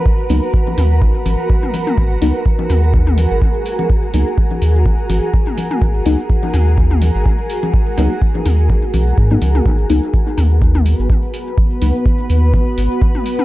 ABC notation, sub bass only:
X:1
M:4/4
L:1/16
Q:"Swing 16ths" 1/4=125
K:G#m
V:1 name="Sub bass" clef=bass
z2 C,, z3 D,,2 G,,, z G,,, z4 z | G,,,2 C,, z3 D,,4- D,, G,,, z4 | z2 C,, z3 D,,2 G,,, z G,,, z4 z | G,,,2 C,, z3 D,,4- D,, G,,, z4 |
z2 C,, z3 D,,2 G,,, z B,,,2 G,,2 C,,2 | G,,,2 C,, z3 D,,4- D,, G,,, z4 | z2 C,, z3 D,,2 G,,, z G,,, z4 z |]